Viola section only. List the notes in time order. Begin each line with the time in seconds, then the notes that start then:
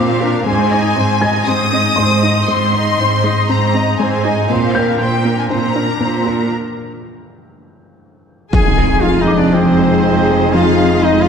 Already playing: C4 C5
0.21 D4 A#4
0.46 C4 C5
0.71 D#4 D#5
0.96 C4 C5
1.22 D#4 D#5
1.48 C4 C5
1.73 D#4 D#5
1.99 C4 C5
2.24 D#4 D#5
2.49 C4 C5
2.73 D#4 D#5
2.99 C4 C5
3.24 D#4 D#5
3.50 C4 C5
3.74 D#4 D#5
3.99 C4 C5
4.25 D#4 D#5
4.50 C4 C5
4.76 D4 A#4
5.01 C4 C5
5.26 D4 A#4
5.50 C4 C5
5.76 D4 A#4
6.02 C4 C5
6.26 D4 A#4
8.53 G#3 G#4